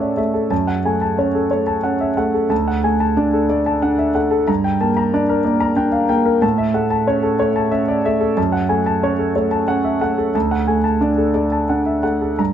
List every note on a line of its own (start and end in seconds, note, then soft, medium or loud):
0.00 0.47 A2 soft
0.00 0.17 A3 soft
0.00 0.53 C#4 soft
0.00 0.34 A4 soft
0.00 0.54 C#5 soft
0.00 0.17 D5 soft
0.00 0.17 E5 soft
0.00 0.53 F#5 soft
0.00 0.51 A5 soft
0.17 0.47 A3 soft
0.17 0.44 E5 soft
0.34 0.51 A4 soft
0.51 2.47 F#2 soft
0.51 0.78 A5 soft
0.67 0.95 F#5 soft
0.85 1.15 A3 soft
0.85 1.02 G#5 soft
1.01 1.28 A5 soft
1.18 1.48 C#4 soft
1.18 1.45 C#5 soft
1.35 1.61 A4 soft
1.51 1.81 A3 soft
1.51 1.77 C#5 soft
1.67 1.94 A5 soft
1.83 2.14 C#4 soft
1.83 2.10 F#5 soft
2.00 2.17 E5 soft
2.17 2.47 A3 soft
2.17 2.44 F#5 soft
2.34 2.51 A4 soft
2.50 4.44 D2 medium
2.50 2.77 A5 soft
2.68 2.94 F#5 soft
2.84 3.14 A3 soft
2.84 3.01 G#5 soft
3.00 3.27 A5 medium
3.17 3.47 D4 soft
3.17 3.43 D5 soft
3.33 3.60 A4 soft
3.49 3.79 A3 soft
3.49 3.76 D5 soft
3.66 3.93 A5 medium
3.82 4.12 D4 soft
3.82 4.09 F#5 soft
3.99 4.15 E5 soft
4.15 4.45 A3 soft
4.15 4.42 F#5 soft
4.31 4.48 A4 medium
4.47 6.39 G2 medium
4.47 4.74 A#5 medium
4.64 4.91 G5 medium
4.81 5.10 A#3 soft
4.81 4.97 A5 soft
4.97 5.23 A#5 medium
5.14 5.42 D4 soft
5.14 5.39 D5 medium
5.29 5.55 A#4 medium
5.45 5.74 A#3 soft
5.45 5.71 D5 soft
5.60 5.87 A#5 medium
5.76 6.06 D4 soft
5.76 6.03 G5 medium
5.92 6.09 F5 soft
6.09 6.39 A#3 soft
6.09 6.36 G5 medium
6.26 6.43 A#4 medium
6.42 8.32 A2 medium
6.42 6.69 A5 medium
6.58 6.85 E5 medium
6.74 7.04 A3 soft
6.74 6.91 F#5 soft
6.90 7.17 A5 medium
7.07 7.36 C#4 soft
7.07 7.34 C#5 medium
7.23 7.49 A4 medium
7.39 7.69 A3 soft
7.39 7.66 C#5 medium
7.56 7.82 A5 medium
7.71 8.01 C#4 soft
7.71 7.98 E5 medium
7.88 8.05 D5 soft
8.05 8.34 A3 soft
8.05 8.31 E5 medium
8.21 8.37 A4 medium
8.37 10.31 F#2 medium
8.37 8.63 A5 medium
8.52 8.79 F#5 soft
8.69 8.99 A3 soft
8.69 8.86 G#5 soft
8.86 9.12 A5 medium
9.03 9.32 C#4 soft
9.03 9.29 C#5 medium
9.19 9.45 A4 soft
9.35 9.65 A3 soft
9.35 9.62 C#5 soft
9.51 9.78 A5 medium
9.68 9.98 C#4 soft
9.68 9.95 F#5 medium
9.85 10.01 E5 soft
10.01 10.31 A3 soft
10.01 10.28 F#5 soft
10.18 10.34 A4 soft
10.34 12.35 D2 medium
10.34 10.61 A5 soft
10.51 10.78 F#5 medium
10.68 10.98 A3 soft
10.68 10.84 G#5 soft
10.84 11.11 A5 soft
11.01 11.31 D4 soft
11.01 11.28 D5 soft
11.17 11.45 A4 soft
11.34 11.66 A3 soft
11.34 11.62 D5 soft
11.52 11.79 A5 soft
11.69 12.00 D4 soft
11.69 11.97 F#5 soft
11.86 12.04 E5 soft
12.03 12.35 A3 soft
12.03 12.32 F#5 soft
12.21 12.39 A4 soft
12.39 12.53 G2 soft
12.39 12.53 A#5 soft